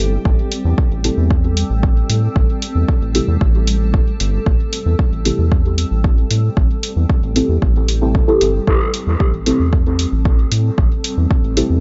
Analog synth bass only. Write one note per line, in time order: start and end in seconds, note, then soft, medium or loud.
0.00 0.18 G1 loud
0.25 0.35 A1 loud
0.65 0.74 E2 medium
0.91 1.10 A1 medium
1.17 1.64 E2 medium
1.70 2.04 A1 medium
2.09 2.29 A2 medium
2.36 2.45 A1 medium
2.75 2.85 E2 medium
3.02 3.21 A1 medium
3.28 3.37 E2 loud
3.41 4.01 A1 loud
4.20 4.39 G1 loud
4.46 4.56 A1 loud
4.86 4.95 E2 medium
5.12 5.31 A1 medium
5.38 5.85 E2 medium
5.91 6.25 A1 medium
6.31 6.50 A2 medium
6.57 6.66 A1 loud
6.96 7.06 E2 medium
7.23 7.42 A1 medium
7.49 7.59 E2 medium
7.62 8.22 A1 loud
8.41 8.60 G1 loud
8.67 8.77 A1 loud
9.07 9.16 E2 medium
9.33 9.52 A1 medium
9.60 10.06 E2 medium
10.12 10.46 A1 medium
10.52 10.71 A2 medium
10.78 10.88 A1 loud
11.17 11.27 E2 medium
11.44 11.63 A1 medium
11.70 11.80 E2 medium